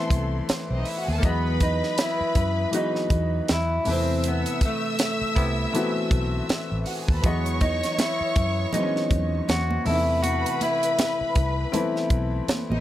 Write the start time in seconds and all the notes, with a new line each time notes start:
Already playing: E3 A3 B3 C4 E4 A4 C6
0.10 C2, kick, closed hi-hat
0.49 muted fingered electric bass stroke, snare, closed hi-hat
0.69 B1 C4 C5
0.77 D#4 D#5
0.85 E4 E5, open hi-hat
0.97 F#4 F#5
1.08 D#2 G#4 G#5
1.14 A4 A5
1.18 E3 A#3
1.22 E2 F#3 G#3 B3 B4 D#5 B5, kick, closed hi-hat
1.60 D#4, kick, closed hi-hat
1.83 snare
1.98 E4, snare, closed hi-hat
2.21 muted fingered electric bass stroke
2.35 F#2, kick, closed hi-hat
2.71 E3 F#3 G#3 B3 F#4, closed hi-hat
2.75 D#4
2.95 snare
3.10 E2, kick, closed hi-hat
3.48 E2 E4, snare, closed hi-hat
3.85 E2 C3 E3 A3 E4 B4 E5 E6, open hi-hat
3.91 C4
4.24 closed hi-hat
4.28 B3
4.46 closed hi-hat
4.61 kick, closed hi-hat
4.65 A3
4.99 snare, closed hi-hat
5.21 muted fingered electric bass stroke
5.36 C2 C3 B3 E4, kick, closed hi-hat
5.73 E3 A3 B3 C4 F#4, closed hi-hat
6.11 B1, kick, closed hi-hat
6.49 muted fingered electric bass stroke, snare, closed hi-hat
6.72 A1
6.85 F#4 F#5, open hi-hat
6.98 G#4 G#5
7.08 D#2 A4 A5, kick
7.16 B4 B5
7.22 E2 E3 F#3 G#3 B3 C#5 D#5 C#6, kick, closed hi-hat, muted conga
7.46 closed hi-hat
7.61 D#4, kick, closed hi-hat, muted conga
7.83 snare, closed hi-hat
7.93 D#4
7.99 E4, snare, closed hi-hat, high conga
8.21 muted fingered electric bass stroke
8.36 F#2, kick, closed hi-hat
8.72 E3 F#3 G#3 B3 C4 D#4, closed hi-hat, muted conga, low conga
8.83 C#4
8.96 snare
9.10 E2, kick, closed hi-hat, muted conga, low conga
9.48 E2 F#4, snare, closed hi-hat, high conga
9.71 high conga
9.84 E2 C3 E3 A3 B3 D#4 E4 B4 B5, open hi-hat
9.94 E4
10.23 F#4, closed hi-hat, muted conga
10.46 closed hi-hat
10.61 E4, closed hi-hat, muted conga
10.83 closed hi-hat
10.99 snare, closed hi-hat, high conga
11.21 muted fingered electric bass stroke
11.35 C2, kick, closed hi-hat
11.72 E3 A3 B3 C4 E4, closed hi-hat, muted conga, low conga
11.96 snare
12.10 B1, kick, closed hi-hat, muted conga
12.48 muted fingered electric bass stroke, snare, closed hi-hat, high conga
12.69 A1 D#4 D#5, high conga